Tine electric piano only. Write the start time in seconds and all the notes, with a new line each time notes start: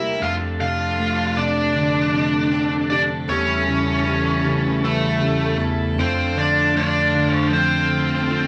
Already playing: C3 G3 E4 G4 A#4 E5 G5
0.02 G3
0.21 F2
0.60 C3
0.98 A3
1.36 C3
1.75 D3
2.14 C3
2.52 C4
2.91 C3
3.28 E2
3.67 C#3
4.06 E3
4.44 C#3
4.81 E3
5.19 C#3
5.58 E2
5.96 F2
6.35 D3
6.73 A3
7.13 D3
7.51 F3
7.89 D3
8.28 F3